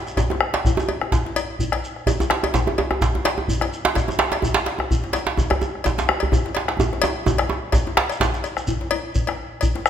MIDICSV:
0, 0, Header, 1, 5, 480
1, 0, Start_track
1, 0, Tempo, 472069
1, 1145, Time_signature, 4, 2, 24, 8
1, 10063, End_track
2, 0, Start_track
2, 0, Title_t, "Bombo"
2, 70, Note_on_c, 9, 37, 34
2, 171, Note_off_c, 9, 37, 0
2, 171, Note_on_c, 9, 37, 31
2, 171, Note_on_c, 9, 43, 103
2, 273, Note_off_c, 9, 37, 0
2, 273, Note_off_c, 9, 43, 0
2, 306, Note_on_c, 9, 37, 30
2, 407, Note_off_c, 9, 37, 0
2, 412, Note_on_c, 9, 37, 93
2, 514, Note_off_c, 9, 37, 0
2, 657, Note_on_c, 9, 37, 35
2, 657, Note_on_c, 9, 43, 104
2, 759, Note_off_c, 9, 37, 0
2, 759, Note_off_c, 9, 43, 0
2, 789, Note_on_c, 9, 37, 28
2, 891, Note_off_c, 9, 37, 0
2, 1032, Note_on_c, 9, 37, 72
2, 1133, Note_off_c, 9, 37, 0
2, 1136, Note_on_c, 9, 43, 97
2, 1238, Note_off_c, 9, 43, 0
2, 1618, Note_on_c, 9, 43, 85
2, 1720, Note_off_c, 9, 43, 0
2, 1751, Note_on_c, 9, 37, 81
2, 1853, Note_off_c, 9, 37, 0
2, 1996, Note_on_c, 9, 37, 33
2, 2098, Note_off_c, 9, 37, 0
2, 2098, Note_on_c, 9, 43, 100
2, 2200, Note_off_c, 9, 43, 0
2, 2338, Note_on_c, 9, 37, 85
2, 2440, Note_off_c, 9, 37, 0
2, 2477, Note_on_c, 9, 37, 31
2, 2579, Note_off_c, 9, 37, 0
2, 2583, Note_on_c, 9, 43, 94
2, 2685, Note_off_c, 9, 43, 0
2, 2716, Note_on_c, 9, 37, 29
2, 2817, Note_off_c, 9, 37, 0
2, 2956, Note_on_c, 9, 37, 72
2, 3057, Note_off_c, 9, 37, 0
2, 3063, Note_on_c, 9, 43, 103
2, 3165, Note_off_c, 9, 43, 0
2, 3538, Note_on_c, 9, 43, 91
2, 3640, Note_off_c, 9, 43, 0
2, 3673, Note_on_c, 9, 37, 77
2, 3775, Note_off_c, 9, 37, 0
2, 3917, Note_on_c, 9, 37, 34
2, 4018, Note_off_c, 9, 37, 0
2, 4028, Note_on_c, 9, 43, 104
2, 4129, Note_off_c, 9, 43, 0
2, 4266, Note_on_c, 9, 37, 91
2, 4368, Note_off_c, 9, 37, 0
2, 4409, Note_on_c, 9, 37, 34
2, 4500, Note_on_c, 9, 43, 103
2, 4511, Note_off_c, 9, 37, 0
2, 4602, Note_off_c, 9, 43, 0
2, 4641, Note_on_c, 9, 37, 31
2, 4743, Note_off_c, 9, 37, 0
2, 4881, Note_on_c, 9, 37, 71
2, 4982, Note_off_c, 9, 37, 0
2, 4991, Note_on_c, 9, 43, 107
2, 5092, Note_off_c, 9, 43, 0
2, 5469, Note_on_c, 9, 43, 106
2, 5571, Note_off_c, 9, 43, 0
2, 5601, Note_on_c, 9, 37, 91
2, 5703, Note_off_c, 9, 37, 0
2, 5849, Note_on_c, 9, 37, 35
2, 5950, Note_off_c, 9, 37, 0
2, 5956, Note_on_c, 9, 43, 102
2, 6058, Note_off_c, 9, 43, 0
2, 6191, Note_on_c, 9, 37, 112
2, 6292, Note_off_c, 9, 37, 0
2, 6322, Note_on_c, 9, 37, 38
2, 6424, Note_off_c, 9, 37, 0
2, 6429, Note_on_c, 9, 43, 118
2, 6531, Note_off_c, 9, 43, 0
2, 6561, Note_on_c, 9, 37, 30
2, 6663, Note_off_c, 9, 37, 0
2, 6795, Note_on_c, 9, 37, 80
2, 6897, Note_off_c, 9, 37, 0
2, 6902, Note_on_c, 9, 43, 115
2, 7004, Note_off_c, 9, 43, 0
2, 7043, Note_on_c, 9, 37, 35
2, 7145, Note_off_c, 9, 37, 0
2, 7388, Note_on_c, 9, 43, 107
2, 7489, Note_off_c, 9, 43, 0
2, 7517, Note_on_c, 9, 37, 84
2, 7618, Note_off_c, 9, 37, 0
2, 7628, Note_on_c, 9, 37, 33
2, 7729, Note_off_c, 9, 37, 0
2, 7858, Note_on_c, 9, 43, 112
2, 7960, Note_off_c, 9, 43, 0
2, 8104, Note_on_c, 9, 37, 101
2, 8206, Note_off_c, 9, 37, 0
2, 8341, Note_on_c, 9, 37, 34
2, 8341, Note_on_c, 9, 43, 111
2, 8442, Note_off_c, 9, 37, 0
2, 8442, Note_off_c, 9, 43, 0
2, 8711, Note_on_c, 9, 37, 75
2, 8813, Note_off_c, 9, 37, 0
2, 8820, Note_on_c, 9, 43, 92
2, 8921, Note_off_c, 9, 43, 0
2, 9305, Note_on_c, 9, 43, 80
2, 9407, Note_off_c, 9, 43, 0
2, 9443, Note_on_c, 9, 37, 73
2, 9545, Note_off_c, 9, 37, 0
2, 9788, Note_on_c, 9, 37, 29
2, 9788, Note_on_c, 9, 43, 98
2, 9890, Note_off_c, 9, 37, 0
2, 9890, Note_off_c, 9, 43, 0
2, 9924, Note_on_c, 9, 37, 32
2, 10022, Note_off_c, 9, 37, 0
2, 10022, Note_on_c, 9, 37, 97
2, 10063, Note_off_c, 9, 37, 0
2, 10063, End_track
3, 0, Start_track
3, 0, Title_t, "Djembe"
3, 180, Note_on_c, 9, 63, 104
3, 186, Note_on_c, 9, 62, 22
3, 186, Note_on_c, 9, 64, 71
3, 282, Note_off_c, 9, 63, 0
3, 288, Note_off_c, 9, 62, 0
3, 288, Note_off_c, 9, 64, 0
3, 306, Note_on_c, 9, 63, 78
3, 319, Note_off_c, 9, 63, 0
3, 319, Note_on_c, 9, 62, 64
3, 319, Note_on_c, 9, 63, 63
3, 421, Note_off_c, 9, 62, 0
3, 421, Note_off_c, 9, 63, 0
3, 547, Note_on_c, 9, 62, 81
3, 648, Note_off_c, 9, 62, 0
3, 673, Note_on_c, 9, 63, 73
3, 673, Note_on_c, 9, 64, 72
3, 774, Note_off_c, 9, 63, 0
3, 774, Note_off_c, 9, 64, 0
3, 785, Note_on_c, 9, 63, 111
3, 806, Note_on_c, 9, 62, 58
3, 886, Note_off_c, 9, 63, 0
3, 899, Note_on_c, 9, 63, 77
3, 908, Note_off_c, 9, 62, 0
3, 1001, Note_off_c, 9, 63, 0
3, 1044, Note_on_c, 9, 62, 21
3, 1044, Note_on_c, 9, 63, 52
3, 1141, Note_off_c, 9, 62, 0
3, 1141, Note_on_c, 9, 62, 77
3, 1146, Note_off_c, 9, 63, 0
3, 1151, Note_on_c, 9, 64, 69
3, 1242, Note_off_c, 9, 62, 0
3, 1252, Note_off_c, 9, 64, 0
3, 1284, Note_on_c, 9, 62, 59
3, 1384, Note_on_c, 9, 63, 71
3, 1386, Note_off_c, 9, 62, 0
3, 1485, Note_off_c, 9, 63, 0
3, 1629, Note_on_c, 9, 64, 71
3, 1731, Note_off_c, 9, 64, 0
3, 1760, Note_on_c, 9, 62, 54
3, 1760, Note_on_c, 9, 63, 56
3, 1862, Note_off_c, 9, 62, 0
3, 1862, Note_off_c, 9, 63, 0
3, 2103, Note_on_c, 9, 63, 98
3, 2109, Note_on_c, 9, 64, 69
3, 2205, Note_off_c, 9, 63, 0
3, 2211, Note_off_c, 9, 64, 0
3, 2239, Note_on_c, 9, 62, 56
3, 2239, Note_on_c, 9, 63, 60
3, 2341, Note_off_c, 9, 62, 0
3, 2341, Note_off_c, 9, 63, 0
3, 2345, Note_on_c, 9, 62, 87
3, 2446, Note_off_c, 9, 62, 0
3, 2475, Note_on_c, 9, 63, 83
3, 2577, Note_off_c, 9, 63, 0
3, 2581, Note_on_c, 9, 62, 86
3, 2589, Note_on_c, 9, 63, 75
3, 2589, Note_on_c, 9, 64, 74
3, 2683, Note_off_c, 9, 62, 0
3, 2691, Note_off_c, 9, 63, 0
3, 2691, Note_off_c, 9, 64, 0
3, 2716, Note_on_c, 9, 63, 85
3, 2721, Note_on_c, 9, 62, 53
3, 2818, Note_off_c, 9, 63, 0
3, 2823, Note_off_c, 9, 62, 0
3, 2824, Note_on_c, 9, 62, 24
3, 2831, Note_on_c, 9, 63, 103
3, 2926, Note_off_c, 9, 62, 0
3, 2933, Note_off_c, 9, 63, 0
3, 2954, Note_on_c, 9, 62, 21
3, 2954, Note_on_c, 9, 63, 48
3, 2957, Note_off_c, 9, 63, 0
3, 2957, Note_on_c, 9, 63, 84
3, 3056, Note_off_c, 9, 62, 0
3, 3059, Note_off_c, 9, 63, 0
3, 3069, Note_on_c, 9, 64, 66
3, 3071, Note_on_c, 9, 62, 75
3, 3171, Note_off_c, 9, 64, 0
3, 3172, Note_off_c, 9, 62, 0
3, 3202, Note_on_c, 9, 62, 58
3, 3204, Note_on_c, 9, 63, 76
3, 3302, Note_off_c, 9, 63, 0
3, 3302, Note_on_c, 9, 63, 75
3, 3304, Note_off_c, 9, 62, 0
3, 3310, Note_on_c, 9, 62, 84
3, 3404, Note_off_c, 9, 63, 0
3, 3411, Note_off_c, 9, 62, 0
3, 3434, Note_on_c, 9, 63, 83
3, 3536, Note_off_c, 9, 63, 0
3, 3546, Note_on_c, 9, 64, 69
3, 3648, Note_off_c, 9, 64, 0
3, 3676, Note_on_c, 9, 62, 56
3, 3676, Note_on_c, 9, 63, 56
3, 3778, Note_off_c, 9, 62, 0
3, 3778, Note_off_c, 9, 63, 0
3, 3914, Note_on_c, 9, 62, 108
3, 4016, Note_off_c, 9, 62, 0
3, 4020, Note_on_c, 9, 62, 69
3, 4024, Note_on_c, 9, 64, 68
3, 4121, Note_off_c, 9, 62, 0
3, 4126, Note_off_c, 9, 64, 0
3, 4150, Note_on_c, 9, 63, 82
3, 4156, Note_off_c, 9, 63, 0
3, 4156, Note_on_c, 9, 62, 61
3, 4156, Note_on_c, 9, 63, 60
3, 4257, Note_off_c, 9, 62, 0
3, 4257, Note_off_c, 9, 63, 0
3, 4259, Note_on_c, 9, 62, 116
3, 4360, Note_off_c, 9, 62, 0
3, 4390, Note_on_c, 9, 62, 85
3, 4492, Note_off_c, 9, 62, 0
3, 4497, Note_on_c, 9, 63, 89
3, 4510, Note_off_c, 9, 63, 0
3, 4510, Note_on_c, 9, 63, 75
3, 4510, Note_on_c, 9, 64, 73
3, 4611, Note_off_c, 9, 63, 0
3, 4611, Note_off_c, 9, 64, 0
3, 4620, Note_on_c, 9, 62, 118
3, 4647, Note_off_c, 9, 62, 0
3, 4647, Note_on_c, 9, 62, 62
3, 4740, Note_off_c, 9, 62, 0
3, 4740, Note_on_c, 9, 62, 75
3, 4752, Note_off_c, 9, 62, 0
3, 4752, Note_on_c, 9, 62, 28
3, 4853, Note_off_c, 9, 62, 0
3, 4866, Note_on_c, 9, 63, 77
3, 4880, Note_off_c, 9, 63, 0
3, 4880, Note_on_c, 9, 62, 23
3, 4880, Note_on_c, 9, 63, 55
3, 4981, Note_off_c, 9, 62, 0
3, 4981, Note_off_c, 9, 63, 0
3, 4991, Note_on_c, 9, 64, 74
3, 5092, Note_off_c, 9, 64, 0
3, 5122, Note_on_c, 9, 62, 57
3, 5216, Note_off_c, 9, 62, 0
3, 5216, Note_on_c, 9, 62, 73
3, 5232, Note_on_c, 9, 63, 76
3, 5318, Note_off_c, 9, 62, 0
3, 5334, Note_off_c, 9, 63, 0
3, 5354, Note_on_c, 9, 62, 86
3, 5456, Note_off_c, 9, 62, 0
3, 5464, Note_on_c, 9, 63, 84
3, 5465, Note_on_c, 9, 64, 75
3, 5566, Note_off_c, 9, 63, 0
3, 5566, Note_off_c, 9, 64, 0
3, 5599, Note_on_c, 9, 62, 56
3, 5599, Note_on_c, 9, 63, 59
3, 5602, Note_on_c, 9, 64, 78
3, 5700, Note_off_c, 9, 62, 0
3, 5700, Note_off_c, 9, 63, 0
3, 5704, Note_off_c, 9, 64, 0
3, 5710, Note_on_c, 9, 63, 85
3, 5812, Note_off_c, 9, 63, 0
3, 5951, Note_on_c, 9, 64, 66
3, 5957, Note_on_c, 9, 62, 71
3, 6052, Note_off_c, 9, 64, 0
3, 6059, Note_off_c, 9, 62, 0
3, 6082, Note_on_c, 9, 62, 58
3, 6082, Note_on_c, 9, 63, 62
3, 6087, Note_off_c, 9, 62, 0
3, 6087, Note_on_c, 9, 62, 83
3, 6184, Note_off_c, 9, 63, 0
3, 6189, Note_off_c, 9, 62, 0
3, 6195, Note_on_c, 9, 63, 85
3, 6297, Note_off_c, 9, 63, 0
3, 6333, Note_on_c, 9, 64, 78
3, 6426, Note_off_c, 9, 64, 0
3, 6426, Note_on_c, 9, 63, 74
3, 6426, Note_on_c, 9, 64, 78
3, 6434, Note_off_c, 9, 63, 0
3, 6434, Note_on_c, 9, 63, 81
3, 6527, Note_off_c, 9, 64, 0
3, 6535, Note_off_c, 9, 63, 0
3, 6566, Note_on_c, 9, 62, 62
3, 6668, Note_off_c, 9, 62, 0
3, 6675, Note_on_c, 9, 62, 79
3, 6777, Note_off_c, 9, 62, 0
3, 6798, Note_on_c, 9, 62, 73
3, 6809, Note_off_c, 9, 62, 0
3, 6809, Note_on_c, 9, 62, 24
3, 6809, Note_on_c, 9, 63, 50
3, 6911, Note_off_c, 9, 62, 0
3, 6911, Note_off_c, 9, 63, 0
3, 6911, Note_on_c, 9, 63, 107
3, 6915, Note_on_c, 9, 64, 69
3, 7013, Note_off_c, 9, 63, 0
3, 7016, Note_off_c, 9, 64, 0
3, 7045, Note_on_c, 9, 62, 59
3, 7147, Note_off_c, 9, 62, 0
3, 7153, Note_on_c, 9, 63, 111
3, 7157, Note_off_c, 9, 63, 0
3, 7157, Note_on_c, 9, 63, 74
3, 7259, Note_off_c, 9, 63, 0
3, 7385, Note_on_c, 9, 63, 104
3, 7394, Note_on_c, 9, 64, 75
3, 7486, Note_off_c, 9, 63, 0
3, 7496, Note_off_c, 9, 64, 0
3, 7527, Note_on_c, 9, 63, 60
3, 7621, Note_off_c, 9, 63, 0
3, 7621, Note_on_c, 9, 63, 101
3, 7636, Note_on_c, 9, 62, 21
3, 7723, Note_off_c, 9, 63, 0
3, 7738, Note_off_c, 9, 62, 0
3, 7858, Note_on_c, 9, 63, 96
3, 7874, Note_on_c, 9, 62, 22
3, 7874, Note_on_c, 9, 64, 70
3, 7960, Note_off_c, 9, 63, 0
3, 7976, Note_off_c, 9, 62, 0
3, 7976, Note_off_c, 9, 64, 0
3, 8003, Note_on_c, 9, 62, 61
3, 8003, Note_on_c, 9, 63, 60
3, 8104, Note_off_c, 9, 62, 0
3, 8104, Note_off_c, 9, 63, 0
3, 8106, Note_on_c, 9, 62, 110
3, 8207, Note_off_c, 9, 62, 0
3, 8243, Note_on_c, 9, 62, 24
3, 8345, Note_off_c, 9, 62, 0
3, 8347, Note_on_c, 9, 62, 108
3, 8347, Note_on_c, 9, 63, 75
3, 8347, Note_on_c, 9, 64, 70
3, 8449, Note_off_c, 9, 62, 0
3, 8449, Note_off_c, 9, 63, 0
3, 8449, Note_off_c, 9, 64, 0
3, 8482, Note_on_c, 9, 62, 57
3, 8583, Note_off_c, 9, 62, 0
3, 8718, Note_on_c, 9, 63, 52
3, 8820, Note_off_c, 9, 63, 0
3, 8830, Note_on_c, 9, 64, 76
3, 8931, Note_off_c, 9, 64, 0
3, 8957, Note_on_c, 9, 62, 59
3, 9059, Note_off_c, 9, 62, 0
3, 9067, Note_on_c, 9, 63, 79
3, 9169, Note_off_c, 9, 63, 0
3, 9306, Note_on_c, 9, 62, 23
3, 9306, Note_on_c, 9, 64, 77
3, 9407, Note_off_c, 9, 62, 0
3, 9407, Note_off_c, 9, 64, 0
3, 9439, Note_on_c, 9, 62, 56
3, 9439, Note_on_c, 9, 63, 56
3, 9540, Note_off_c, 9, 62, 0
3, 9540, Note_off_c, 9, 63, 0
3, 9791, Note_on_c, 9, 64, 72
3, 9893, Note_off_c, 9, 64, 0
3, 9918, Note_on_c, 9, 62, 63
3, 9918, Note_on_c, 9, 63, 59
3, 10020, Note_off_c, 9, 62, 0
3, 10020, Note_off_c, 9, 63, 0
3, 10027, Note_on_c, 9, 62, 24
3, 10063, Note_off_c, 9, 62, 0
3, 10063, End_track
4, 0, Start_track
4, 0, Title_t, "Shekere"
4, 74, Note_on_c, 9, 82, 19
4, 176, Note_off_c, 9, 82, 0
4, 186, Note_on_c, 9, 82, 56
4, 288, Note_off_c, 9, 82, 0
4, 670, Note_on_c, 9, 82, 55
4, 772, Note_off_c, 9, 82, 0
4, 808, Note_on_c, 9, 82, 18
4, 910, Note_off_c, 9, 82, 0
4, 1150, Note_on_c, 9, 82, 61
4, 1252, Note_off_c, 9, 82, 0
4, 1395, Note_on_c, 9, 82, 17
4, 1497, Note_off_c, 9, 82, 0
4, 1631, Note_on_c, 9, 82, 61
4, 1733, Note_off_c, 9, 82, 0
4, 1875, Note_on_c, 9, 82, 19
4, 1977, Note_off_c, 9, 82, 0
4, 2111, Note_on_c, 9, 82, 56
4, 2213, Note_off_c, 9, 82, 0
4, 2246, Note_on_c, 9, 82, 20
4, 2348, Note_off_c, 9, 82, 0
4, 2592, Note_on_c, 9, 82, 56
4, 2694, Note_off_c, 9, 82, 0
4, 3069, Note_on_c, 9, 82, 60
4, 3171, Note_off_c, 9, 82, 0
4, 3555, Note_on_c, 9, 82, 64
4, 3656, Note_off_c, 9, 82, 0
4, 3794, Note_on_c, 9, 82, 18
4, 3896, Note_off_c, 9, 82, 0
4, 4043, Note_on_c, 9, 82, 54
4, 4145, Note_off_c, 9, 82, 0
4, 4177, Note_on_c, 9, 82, 22
4, 4279, Note_off_c, 9, 82, 0
4, 4520, Note_on_c, 9, 82, 64
4, 4621, Note_off_c, 9, 82, 0
4, 4999, Note_on_c, 9, 82, 65
4, 5101, Note_off_c, 9, 82, 0
4, 5242, Note_on_c, 9, 82, 17
4, 5344, Note_off_c, 9, 82, 0
4, 5476, Note_on_c, 9, 82, 61
4, 5578, Note_off_c, 9, 82, 0
4, 5711, Note_on_c, 9, 82, 18
4, 5812, Note_off_c, 9, 82, 0
4, 5955, Note_on_c, 9, 82, 51
4, 6057, Note_off_c, 9, 82, 0
4, 6090, Note_on_c, 9, 82, 18
4, 6192, Note_off_c, 9, 82, 0
4, 6441, Note_on_c, 9, 82, 52
4, 6542, Note_off_c, 9, 82, 0
4, 6917, Note_on_c, 9, 82, 54
4, 7019, Note_off_c, 9, 82, 0
4, 7160, Note_on_c, 9, 82, 17
4, 7262, Note_off_c, 9, 82, 0
4, 7390, Note_on_c, 9, 82, 63
4, 7492, Note_off_c, 9, 82, 0
4, 7872, Note_on_c, 9, 82, 53
4, 7974, Note_off_c, 9, 82, 0
4, 8251, Note_on_c, 9, 82, 17
4, 8352, Note_off_c, 9, 82, 0
4, 8356, Note_on_c, 9, 82, 52
4, 8458, Note_off_c, 9, 82, 0
4, 8480, Note_on_c, 9, 82, 16
4, 8582, Note_off_c, 9, 82, 0
4, 8590, Note_on_c, 9, 82, 16
4, 8692, Note_off_c, 9, 82, 0
4, 8719, Note_on_c, 9, 82, 19
4, 8817, Note_off_c, 9, 82, 0
4, 8817, Note_on_c, 9, 82, 62
4, 8919, Note_off_c, 9, 82, 0
4, 9303, Note_on_c, 9, 82, 62
4, 9405, Note_off_c, 9, 82, 0
4, 9785, Note_on_c, 9, 82, 56
4, 9887, Note_off_c, 9, 82, 0
4, 10027, Note_on_c, 9, 82, 20
4, 10063, Note_off_c, 9, 82, 0
4, 10063, End_track
5, 0, Start_track
5, 0, Title_t, "Drums"
5, 176, Note_on_c, 9, 56, 48
5, 277, Note_off_c, 9, 56, 0
5, 549, Note_on_c, 9, 56, 48
5, 651, Note_off_c, 9, 56, 0
5, 901, Note_on_c, 9, 56, 44
5, 1003, Note_off_c, 9, 56, 0
5, 1385, Note_on_c, 9, 56, 65
5, 1487, Note_off_c, 9, 56, 0
5, 1756, Note_on_c, 9, 56, 51
5, 1858, Note_off_c, 9, 56, 0
5, 2106, Note_on_c, 9, 56, 51
5, 2207, Note_off_c, 9, 56, 0
5, 2479, Note_on_c, 9, 56, 50
5, 2581, Note_off_c, 9, 56, 0
5, 2828, Note_on_c, 9, 56, 47
5, 2929, Note_off_c, 9, 56, 0
5, 3307, Note_on_c, 9, 56, 67
5, 3408, Note_off_c, 9, 56, 0
5, 3682, Note_on_c, 9, 56, 49
5, 3783, Note_off_c, 9, 56, 0
5, 4027, Note_on_c, 9, 56, 52
5, 4129, Note_off_c, 9, 56, 0
5, 4400, Note_on_c, 9, 56, 54
5, 4502, Note_off_c, 9, 56, 0
5, 4743, Note_on_c, 9, 56, 43
5, 4844, Note_off_c, 9, 56, 0
5, 5220, Note_on_c, 9, 56, 68
5, 5322, Note_off_c, 9, 56, 0
5, 5594, Note_on_c, 9, 56, 48
5, 5696, Note_off_c, 9, 56, 0
5, 5940, Note_on_c, 9, 56, 62
5, 6042, Note_off_c, 9, 56, 0
5, 6306, Note_on_c, 9, 56, 55
5, 6407, Note_off_c, 9, 56, 0
5, 6656, Note_on_c, 9, 56, 52
5, 6758, Note_off_c, 9, 56, 0
5, 7134, Note_on_c, 9, 56, 82
5, 7235, Note_off_c, 9, 56, 0
5, 7508, Note_on_c, 9, 56, 58
5, 7610, Note_off_c, 9, 56, 0
5, 7854, Note_on_c, 9, 56, 57
5, 7955, Note_off_c, 9, 56, 0
5, 8231, Note_on_c, 9, 56, 52
5, 8333, Note_off_c, 9, 56, 0
5, 8581, Note_on_c, 9, 56, 46
5, 8683, Note_off_c, 9, 56, 0
5, 9057, Note_on_c, 9, 56, 69
5, 9159, Note_off_c, 9, 56, 0
5, 9429, Note_on_c, 9, 56, 52
5, 9530, Note_off_c, 9, 56, 0
5, 9770, Note_on_c, 9, 56, 54
5, 9872, Note_off_c, 9, 56, 0
5, 10063, End_track
0, 0, End_of_file